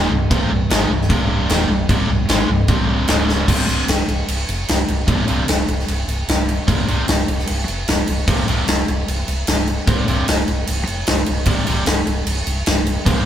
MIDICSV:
0, 0, Header, 1, 4, 480
1, 0, Start_track
1, 0, Key_signature, -3, "minor"
1, 0, Tempo, 398406
1, 375, Time_signature, 4, 2, 24, 8
1, 15968, End_track
2, 0, Start_track
2, 0, Title_t, "Distorted electric guitar"
2, 0, Program_c, 0, 30
2, 0, Note_on_c, 0, 39, 85
2, 0, Note_on_c, 0, 46, 107
2, 0, Note_on_c, 0, 51, 105
2, 124, Note_off_c, 0, 39, 0
2, 127, Note_off_c, 0, 46, 0
2, 130, Note_off_c, 0, 51, 0
2, 131, Note_on_c, 0, 36, 72
2, 133, Note_on_c, 0, 43, 75
2, 324, Note_off_c, 0, 36, 0
2, 325, Note_off_c, 0, 43, 0
2, 365, Note_on_c, 0, 36, 103
2, 368, Note_on_c, 0, 43, 102
2, 376, Note_on_c, 0, 48, 113
2, 593, Note_off_c, 0, 36, 0
2, 599, Note_off_c, 0, 43, 0
2, 607, Note_off_c, 0, 48, 0
2, 607, Note_on_c, 0, 36, 60
2, 613, Note_on_c, 0, 43, 68
2, 801, Note_off_c, 0, 36, 0
2, 804, Note_off_c, 0, 43, 0
2, 839, Note_on_c, 0, 44, 102
2, 843, Note_on_c, 0, 51, 101
2, 849, Note_on_c, 0, 56, 110
2, 1077, Note_off_c, 0, 44, 0
2, 1079, Note_off_c, 0, 51, 0
2, 1082, Note_off_c, 0, 56, 0
2, 1083, Note_on_c, 0, 36, 64
2, 1088, Note_on_c, 0, 43, 75
2, 1278, Note_off_c, 0, 36, 0
2, 1280, Note_off_c, 0, 43, 0
2, 1313, Note_on_c, 0, 36, 109
2, 1314, Note_on_c, 0, 43, 107
2, 1319, Note_on_c, 0, 48, 107
2, 1792, Note_off_c, 0, 36, 0
2, 1792, Note_off_c, 0, 43, 0
2, 1795, Note_off_c, 0, 48, 0
2, 1797, Note_on_c, 0, 39, 90
2, 1805, Note_on_c, 0, 46, 95
2, 1805, Note_on_c, 0, 51, 98
2, 2031, Note_off_c, 0, 39, 0
2, 2036, Note_on_c, 0, 36, 72
2, 2037, Note_off_c, 0, 46, 0
2, 2038, Note_off_c, 0, 51, 0
2, 2042, Note_on_c, 0, 43, 86
2, 2232, Note_off_c, 0, 36, 0
2, 2235, Note_off_c, 0, 43, 0
2, 2277, Note_on_c, 0, 36, 96
2, 2283, Note_on_c, 0, 43, 101
2, 2286, Note_on_c, 0, 48, 115
2, 2505, Note_off_c, 0, 36, 0
2, 2511, Note_off_c, 0, 43, 0
2, 2518, Note_off_c, 0, 48, 0
2, 2519, Note_on_c, 0, 36, 58
2, 2525, Note_on_c, 0, 43, 64
2, 2713, Note_off_c, 0, 36, 0
2, 2716, Note_off_c, 0, 43, 0
2, 2755, Note_on_c, 0, 44, 110
2, 2762, Note_on_c, 0, 51, 105
2, 2767, Note_on_c, 0, 56, 105
2, 2992, Note_off_c, 0, 44, 0
2, 2995, Note_off_c, 0, 51, 0
2, 2998, Note_off_c, 0, 56, 0
2, 3000, Note_on_c, 0, 36, 67
2, 3005, Note_on_c, 0, 43, 72
2, 3193, Note_off_c, 0, 36, 0
2, 3195, Note_off_c, 0, 43, 0
2, 3233, Note_on_c, 0, 36, 103
2, 3239, Note_on_c, 0, 43, 96
2, 3247, Note_on_c, 0, 48, 111
2, 3713, Note_off_c, 0, 36, 0
2, 3713, Note_on_c, 0, 37, 99
2, 3718, Note_off_c, 0, 43, 0
2, 3718, Note_on_c, 0, 44, 81
2, 3722, Note_off_c, 0, 48, 0
2, 3722, Note_on_c, 0, 49, 106
2, 4182, Note_off_c, 0, 37, 0
2, 4186, Note_on_c, 0, 36, 94
2, 4192, Note_off_c, 0, 44, 0
2, 4194, Note_off_c, 0, 49, 0
2, 4198, Note_on_c, 0, 43, 96
2, 4201, Note_on_c, 0, 48, 102
2, 4386, Note_off_c, 0, 36, 0
2, 4392, Note_off_c, 0, 43, 0
2, 4393, Note_off_c, 0, 48, 0
2, 4421, Note_on_c, 0, 36, 81
2, 4428, Note_on_c, 0, 43, 73
2, 4435, Note_on_c, 0, 48, 90
2, 4623, Note_off_c, 0, 36, 0
2, 4627, Note_off_c, 0, 43, 0
2, 4630, Note_off_c, 0, 48, 0
2, 6110, Note_on_c, 0, 36, 92
2, 6115, Note_on_c, 0, 43, 99
2, 6120, Note_on_c, 0, 48, 102
2, 6309, Note_off_c, 0, 36, 0
2, 6311, Note_off_c, 0, 43, 0
2, 6314, Note_off_c, 0, 48, 0
2, 6349, Note_on_c, 0, 36, 87
2, 6352, Note_on_c, 0, 43, 89
2, 6358, Note_on_c, 0, 48, 80
2, 6549, Note_off_c, 0, 36, 0
2, 6550, Note_off_c, 0, 43, 0
2, 6553, Note_off_c, 0, 48, 0
2, 8040, Note_on_c, 0, 36, 94
2, 8047, Note_on_c, 0, 43, 98
2, 8050, Note_on_c, 0, 48, 94
2, 8237, Note_off_c, 0, 36, 0
2, 8240, Note_off_c, 0, 43, 0
2, 8241, Note_off_c, 0, 48, 0
2, 8282, Note_on_c, 0, 36, 89
2, 8291, Note_on_c, 0, 43, 91
2, 8296, Note_on_c, 0, 48, 94
2, 8478, Note_off_c, 0, 36, 0
2, 8483, Note_off_c, 0, 43, 0
2, 8485, Note_off_c, 0, 48, 0
2, 9974, Note_on_c, 0, 36, 101
2, 9978, Note_on_c, 0, 43, 102
2, 9987, Note_on_c, 0, 48, 106
2, 10167, Note_off_c, 0, 36, 0
2, 10169, Note_off_c, 0, 43, 0
2, 10173, Note_off_c, 0, 48, 0
2, 10206, Note_on_c, 0, 36, 82
2, 10212, Note_on_c, 0, 43, 80
2, 10218, Note_on_c, 0, 48, 94
2, 10403, Note_off_c, 0, 36, 0
2, 10406, Note_off_c, 0, 43, 0
2, 10409, Note_off_c, 0, 48, 0
2, 11888, Note_on_c, 0, 36, 91
2, 11895, Note_on_c, 0, 43, 95
2, 11899, Note_on_c, 0, 48, 111
2, 12087, Note_off_c, 0, 36, 0
2, 12090, Note_off_c, 0, 43, 0
2, 12092, Note_off_c, 0, 48, 0
2, 12130, Note_on_c, 0, 36, 80
2, 12134, Note_on_c, 0, 43, 88
2, 12139, Note_on_c, 0, 48, 81
2, 12327, Note_off_c, 0, 36, 0
2, 12330, Note_off_c, 0, 43, 0
2, 12332, Note_off_c, 0, 48, 0
2, 13815, Note_on_c, 0, 36, 94
2, 13820, Note_on_c, 0, 43, 108
2, 13824, Note_on_c, 0, 48, 96
2, 14011, Note_off_c, 0, 36, 0
2, 14014, Note_off_c, 0, 43, 0
2, 14016, Note_off_c, 0, 48, 0
2, 14053, Note_on_c, 0, 36, 77
2, 14057, Note_on_c, 0, 43, 82
2, 14064, Note_on_c, 0, 48, 87
2, 14250, Note_off_c, 0, 36, 0
2, 14252, Note_off_c, 0, 43, 0
2, 14255, Note_off_c, 0, 48, 0
2, 15736, Note_on_c, 0, 36, 106
2, 15743, Note_on_c, 0, 43, 98
2, 15748, Note_on_c, 0, 48, 92
2, 15931, Note_off_c, 0, 36, 0
2, 15935, Note_off_c, 0, 43, 0
2, 15937, Note_off_c, 0, 48, 0
2, 15968, End_track
3, 0, Start_track
3, 0, Title_t, "Fingered electric bass"
3, 0, Program_c, 1, 33
3, 129, Note_on_c, 1, 24, 81
3, 354, Note_off_c, 1, 24, 0
3, 375, Note_on_c, 1, 24, 97
3, 596, Note_off_c, 1, 24, 0
3, 602, Note_on_c, 1, 24, 72
3, 829, Note_off_c, 1, 24, 0
3, 848, Note_on_c, 1, 32, 98
3, 1072, Note_off_c, 1, 32, 0
3, 1082, Note_on_c, 1, 24, 91
3, 1308, Note_off_c, 1, 24, 0
3, 1323, Note_on_c, 1, 24, 95
3, 1770, Note_off_c, 1, 24, 0
3, 1798, Note_on_c, 1, 27, 101
3, 2024, Note_off_c, 1, 27, 0
3, 2035, Note_on_c, 1, 24, 81
3, 2263, Note_off_c, 1, 24, 0
3, 2284, Note_on_c, 1, 24, 100
3, 2507, Note_off_c, 1, 24, 0
3, 2521, Note_on_c, 1, 24, 76
3, 2745, Note_off_c, 1, 24, 0
3, 2759, Note_on_c, 1, 32, 97
3, 2984, Note_off_c, 1, 32, 0
3, 3000, Note_on_c, 1, 24, 81
3, 3224, Note_off_c, 1, 24, 0
3, 3235, Note_on_c, 1, 24, 87
3, 3684, Note_off_c, 1, 24, 0
3, 3714, Note_on_c, 1, 25, 95
3, 4163, Note_off_c, 1, 25, 0
3, 4199, Note_on_c, 1, 24, 93
3, 4374, Note_off_c, 1, 24, 0
3, 4427, Note_on_c, 1, 24, 78
3, 4607, Note_off_c, 1, 24, 0
3, 4668, Note_on_c, 1, 24, 88
3, 4848, Note_off_c, 1, 24, 0
3, 4911, Note_on_c, 1, 24, 88
3, 5090, Note_off_c, 1, 24, 0
3, 5156, Note_on_c, 1, 24, 90
3, 5333, Note_off_c, 1, 24, 0
3, 5406, Note_on_c, 1, 29, 97
3, 5580, Note_off_c, 1, 29, 0
3, 5646, Note_on_c, 1, 24, 83
3, 5820, Note_off_c, 1, 24, 0
3, 5886, Note_on_c, 1, 24, 81
3, 6060, Note_off_c, 1, 24, 0
3, 6119, Note_on_c, 1, 24, 98
3, 6296, Note_off_c, 1, 24, 0
3, 6367, Note_on_c, 1, 24, 86
3, 6541, Note_off_c, 1, 24, 0
3, 6606, Note_on_c, 1, 24, 87
3, 6781, Note_off_c, 1, 24, 0
3, 6847, Note_on_c, 1, 24, 90
3, 7022, Note_off_c, 1, 24, 0
3, 7087, Note_on_c, 1, 24, 84
3, 7262, Note_off_c, 1, 24, 0
3, 7321, Note_on_c, 1, 24, 96
3, 7498, Note_off_c, 1, 24, 0
3, 7563, Note_on_c, 1, 24, 83
3, 7915, Note_off_c, 1, 24, 0
3, 8049, Note_on_c, 1, 24, 102
3, 8224, Note_off_c, 1, 24, 0
3, 8294, Note_on_c, 1, 24, 77
3, 8467, Note_off_c, 1, 24, 0
3, 8537, Note_on_c, 1, 24, 93
3, 8710, Note_off_c, 1, 24, 0
3, 8774, Note_on_c, 1, 24, 89
3, 8949, Note_off_c, 1, 24, 0
3, 9022, Note_on_c, 1, 24, 94
3, 9194, Note_off_c, 1, 24, 0
3, 9257, Note_on_c, 1, 29, 98
3, 9431, Note_off_c, 1, 29, 0
3, 9493, Note_on_c, 1, 24, 89
3, 9668, Note_off_c, 1, 24, 0
3, 9737, Note_on_c, 1, 24, 83
3, 9911, Note_off_c, 1, 24, 0
3, 9969, Note_on_c, 1, 24, 101
3, 10147, Note_off_c, 1, 24, 0
3, 10212, Note_on_c, 1, 24, 81
3, 10389, Note_off_c, 1, 24, 0
3, 10454, Note_on_c, 1, 24, 94
3, 10630, Note_off_c, 1, 24, 0
3, 10700, Note_on_c, 1, 24, 87
3, 10874, Note_off_c, 1, 24, 0
3, 10937, Note_on_c, 1, 24, 88
3, 11113, Note_off_c, 1, 24, 0
3, 11180, Note_on_c, 1, 24, 89
3, 11354, Note_off_c, 1, 24, 0
3, 11421, Note_on_c, 1, 24, 96
3, 11771, Note_off_c, 1, 24, 0
3, 11900, Note_on_c, 1, 24, 93
3, 12075, Note_off_c, 1, 24, 0
3, 12141, Note_on_c, 1, 24, 88
3, 12316, Note_off_c, 1, 24, 0
3, 12388, Note_on_c, 1, 24, 91
3, 12560, Note_off_c, 1, 24, 0
3, 12626, Note_on_c, 1, 24, 84
3, 12800, Note_off_c, 1, 24, 0
3, 12871, Note_on_c, 1, 24, 97
3, 13042, Note_off_c, 1, 24, 0
3, 13104, Note_on_c, 1, 29, 97
3, 13279, Note_off_c, 1, 29, 0
3, 13347, Note_on_c, 1, 24, 93
3, 13520, Note_off_c, 1, 24, 0
3, 13594, Note_on_c, 1, 24, 81
3, 13765, Note_off_c, 1, 24, 0
3, 13816, Note_on_c, 1, 24, 98
3, 13994, Note_off_c, 1, 24, 0
3, 14064, Note_on_c, 1, 24, 84
3, 14238, Note_off_c, 1, 24, 0
3, 14297, Note_on_c, 1, 24, 98
3, 14474, Note_off_c, 1, 24, 0
3, 14537, Note_on_c, 1, 24, 92
3, 14714, Note_off_c, 1, 24, 0
3, 14776, Note_on_c, 1, 24, 86
3, 14953, Note_off_c, 1, 24, 0
3, 15020, Note_on_c, 1, 24, 101
3, 15196, Note_off_c, 1, 24, 0
3, 15261, Note_on_c, 1, 24, 96
3, 15612, Note_off_c, 1, 24, 0
3, 15739, Note_on_c, 1, 24, 93
3, 15915, Note_off_c, 1, 24, 0
3, 15968, End_track
4, 0, Start_track
4, 0, Title_t, "Drums"
4, 373, Note_on_c, 9, 36, 113
4, 378, Note_on_c, 9, 49, 62
4, 493, Note_off_c, 9, 36, 0
4, 498, Note_off_c, 9, 49, 0
4, 848, Note_on_c, 9, 49, 74
4, 861, Note_on_c, 9, 38, 126
4, 968, Note_off_c, 9, 49, 0
4, 981, Note_off_c, 9, 38, 0
4, 1223, Note_on_c, 9, 38, 33
4, 1324, Note_on_c, 9, 36, 109
4, 1327, Note_on_c, 9, 49, 64
4, 1344, Note_off_c, 9, 38, 0
4, 1445, Note_off_c, 9, 36, 0
4, 1447, Note_off_c, 9, 49, 0
4, 1801, Note_on_c, 9, 49, 71
4, 1814, Note_on_c, 9, 38, 110
4, 1922, Note_off_c, 9, 49, 0
4, 1935, Note_off_c, 9, 38, 0
4, 2280, Note_on_c, 9, 36, 110
4, 2280, Note_on_c, 9, 49, 64
4, 2400, Note_off_c, 9, 36, 0
4, 2400, Note_off_c, 9, 49, 0
4, 2754, Note_on_c, 9, 49, 69
4, 2768, Note_on_c, 9, 38, 124
4, 2875, Note_off_c, 9, 49, 0
4, 2888, Note_off_c, 9, 38, 0
4, 3229, Note_on_c, 9, 49, 63
4, 3235, Note_on_c, 9, 36, 118
4, 3349, Note_off_c, 9, 49, 0
4, 3355, Note_off_c, 9, 36, 0
4, 3706, Note_on_c, 9, 49, 63
4, 3720, Note_on_c, 9, 38, 125
4, 3827, Note_off_c, 9, 49, 0
4, 3840, Note_off_c, 9, 38, 0
4, 3962, Note_on_c, 9, 38, 69
4, 4082, Note_off_c, 9, 38, 0
4, 4195, Note_on_c, 9, 36, 112
4, 4197, Note_on_c, 9, 49, 82
4, 4197, Note_on_c, 9, 57, 121
4, 4316, Note_off_c, 9, 36, 0
4, 4318, Note_off_c, 9, 49, 0
4, 4318, Note_off_c, 9, 57, 0
4, 4443, Note_on_c, 9, 49, 61
4, 4564, Note_off_c, 9, 49, 0
4, 4676, Note_on_c, 9, 49, 90
4, 4690, Note_on_c, 9, 38, 111
4, 4797, Note_off_c, 9, 49, 0
4, 4810, Note_off_c, 9, 38, 0
4, 4921, Note_on_c, 9, 49, 60
4, 5041, Note_off_c, 9, 49, 0
4, 5161, Note_on_c, 9, 49, 91
4, 5282, Note_off_c, 9, 49, 0
4, 5404, Note_on_c, 9, 49, 71
4, 5525, Note_off_c, 9, 49, 0
4, 5644, Note_on_c, 9, 49, 87
4, 5657, Note_on_c, 9, 38, 118
4, 5764, Note_off_c, 9, 49, 0
4, 5777, Note_off_c, 9, 38, 0
4, 5884, Note_on_c, 9, 49, 60
4, 6004, Note_off_c, 9, 49, 0
4, 6119, Note_on_c, 9, 36, 114
4, 6124, Note_on_c, 9, 49, 74
4, 6239, Note_off_c, 9, 36, 0
4, 6244, Note_off_c, 9, 49, 0
4, 6358, Note_on_c, 9, 49, 64
4, 6478, Note_off_c, 9, 49, 0
4, 6601, Note_on_c, 9, 49, 86
4, 6614, Note_on_c, 9, 38, 107
4, 6722, Note_off_c, 9, 49, 0
4, 6735, Note_off_c, 9, 38, 0
4, 6847, Note_on_c, 9, 49, 59
4, 6968, Note_off_c, 9, 49, 0
4, 6978, Note_on_c, 9, 38, 32
4, 7087, Note_on_c, 9, 49, 75
4, 7099, Note_off_c, 9, 38, 0
4, 7207, Note_off_c, 9, 49, 0
4, 7332, Note_on_c, 9, 49, 62
4, 7452, Note_off_c, 9, 49, 0
4, 7572, Note_on_c, 9, 49, 82
4, 7585, Note_on_c, 9, 38, 107
4, 7693, Note_off_c, 9, 49, 0
4, 7706, Note_off_c, 9, 38, 0
4, 7814, Note_on_c, 9, 49, 59
4, 7934, Note_off_c, 9, 49, 0
4, 8049, Note_on_c, 9, 36, 109
4, 8056, Note_on_c, 9, 49, 77
4, 8169, Note_off_c, 9, 36, 0
4, 8177, Note_off_c, 9, 49, 0
4, 8292, Note_on_c, 9, 49, 57
4, 8413, Note_off_c, 9, 49, 0
4, 8528, Note_on_c, 9, 49, 91
4, 8542, Note_on_c, 9, 38, 122
4, 8649, Note_off_c, 9, 49, 0
4, 8662, Note_off_c, 9, 38, 0
4, 8773, Note_on_c, 9, 49, 65
4, 8893, Note_off_c, 9, 49, 0
4, 8900, Note_on_c, 9, 38, 35
4, 9004, Note_on_c, 9, 49, 87
4, 9020, Note_off_c, 9, 38, 0
4, 9124, Note_off_c, 9, 49, 0
4, 9251, Note_on_c, 9, 49, 64
4, 9372, Note_off_c, 9, 49, 0
4, 9489, Note_on_c, 9, 49, 87
4, 9503, Note_on_c, 9, 38, 116
4, 9610, Note_off_c, 9, 49, 0
4, 9623, Note_off_c, 9, 38, 0
4, 9727, Note_on_c, 9, 49, 70
4, 9848, Note_off_c, 9, 49, 0
4, 9972, Note_on_c, 9, 49, 94
4, 9973, Note_on_c, 9, 36, 116
4, 10093, Note_off_c, 9, 36, 0
4, 10093, Note_off_c, 9, 49, 0
4, 10214, Note_on_c, 9, 49, 62
4, 10334, Note_off_c, 9, 49, 0
4, 10453, Note_on_c, 9, 49, 84
4, 10467, Note_on_c, 9, 38, 118
4, 10574, Note_off_c, 9, 49, 0
4, 10587, Note_off_c, 9, 38, 0
4, 10701, Note_on_c, 9, 49, 53
4, 10821, Note_off_c, 9, 49, 0
4, 10942, Note_on_c, 9, 49, 77
4, 11063, Note_off_c, 9, 49, 0
4, 11178, Note_on_c, 9, 49, 62
4, 11299, Note_off_c, 9, 49, 0
4, 11410, Note_on_c, 9, 49, 88
4, 11424, Note_on_c, 9, 38, 110
4, 11531, Note_off_c, 9, 49, 0
4, 11544, Note_off_c, 9, 38, 0
4, 11656, Note_on_c, 9, 49, 59
4, 11776, Note_off_c, 9, 49, 0
4, 11897, Note_on_c, 9, 49, 72
4, 11898, Note_on_c, 9, 36, 118
4, 12017, Note_off_c, 9, 49, 0
4, 12018, Note_off_c, 9, 36, 0
4, 12142, Note_on_c, 9, 49, 59
4, 12263, Note_off_c, 9, 49, 0
4, 12382, Note_on_c, 9, 49, 89
4, 12395, Note_on_c, 9, 38, 127
4, 12503, Note_off_c, 9, 49, 0
4, 12516, Note_off_c, 9, 38, 0
4, 12622, Note_on_c, 9, 49, 58
4, 12742, Note_off_c, 9, 49, 0
4, 12859, Note_on_c, 9, 49, 88
4, 12980, Note_off_c, 9, 49, 0
4, 13100, Note_on_c, 9, 49, 68
4, 13221, Note_off_c, 9, 49, 0
4, 13333, Note_on_c, 9, 49, 92
4, 13346, Note_on_c, 9, 38, 127
4, 13454, Note_off_c, 9, 49, 0
4, 13467, Note_off_c, 9, 38, 0
4, 13569, Note_on_c, 9, 49, 71
4, 13690, Note_off_c, 9, 49, 0
4, 13801, Note_on_c, 9, 49, 87
4, 13813, Note_on_c, 9, 36, 111
4, 13922, Note_off_c, 9, 49, 0
4, 13934, Note_off_c, 9, 36, 0
4, 14055, Note_on_c, 9, 49, 67
4, 14176, Note_off_c, 9, 49, 0
4, 14290, Note_on_c, 9, 49, 93
4, 14303, Note_on_c, 9, 38, 124
4, 14411, Note_off_c, 9, 49, 0
4, 14424, Note_off_c, 9, 38, 0
4, 14539, Note_on_c, 9, 49, 61
4, 14660, Note_off_c, 9, 49, 0
4, 14778, Note_on_c, 9, 49, 87
4, 14899, Note_off_c, 9, 49, 0
4, 15019, Note_on_c, 9, 49, 71
4, 15140, Note_off_c, 9, 49, 0
4, 15254, Note_on_c, 9, 49, 81
4, 15267, Note_on_c, 9, 38, 123
4, 15374, Note_off_c, 9, 49, 0
4, 15387, Note_off_c, 9, 38, 0
4, 15500, Note_on_c, 9, 49, 70
4, 15621, Note_off_c, 9, 49, 0
4, 15739, Note_on_c, 9, 36, 117
4, 15743, Note_on_c, 9, 49, 82
4, 15859, Note_off_c, 9, 36, 0
4, 15863, Note_off_c, 9, 49, 0
4, 15968, End_track
0, 0, End_of_file